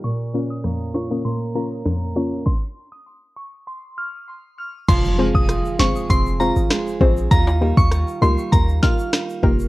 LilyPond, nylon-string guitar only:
\new Staff \with { instrumentName = "Nylon-string guitar" } { \time 4/4 \key f \minor \tempo 4 = 99 bes,8 des'8 bes8 des'8 bes8 des'8 bes8 des'8 | r1 | <f f'>8 aes8 f'8 aes8 c'8 f'8 aes8 c'8 | <ees f'>8 g8 f'8 g8 bes8 f'8 g8 bes8 | }